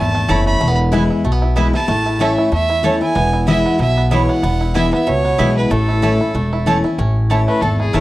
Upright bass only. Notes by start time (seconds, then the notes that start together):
Already playing: G#1
0.29 F#1
0.61 E1
1.24 B1
1.88 A1
2.52 E2
3.16 E1
3.79 B1
4.43 E1
5.07 C#2
5.39 B1
5.71 A1
6.34 E1
6.98 A1
7.62 G#1
7.93 F#1